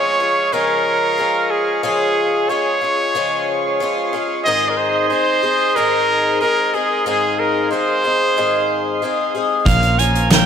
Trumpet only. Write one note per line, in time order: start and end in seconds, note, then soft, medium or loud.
0.00 0.55 C#5 loud
0.54 1.52 A#4 loud
1.51 1.83 G#4 medium
1.84 2.51 G#4 loud
2.50 4.13 C#5 loud
4.45 4.72 D#5 loud
4.70 4.79 A#4 medium
4.77 5.09 C5 loud
5.09 5.77 C5 loud
5.76 6.41 A#4 loud
6.41 6.76 A#4 loud
6.75 7.06 G#4 medium
7.07 7.41 G#4 loud
7.39 7.71 A#4 medium
7.72 9.30 C5 loud
9.67 10.01 F5 loud
9.99 10.31 G#5 loud
10.31 10.46 G5 loud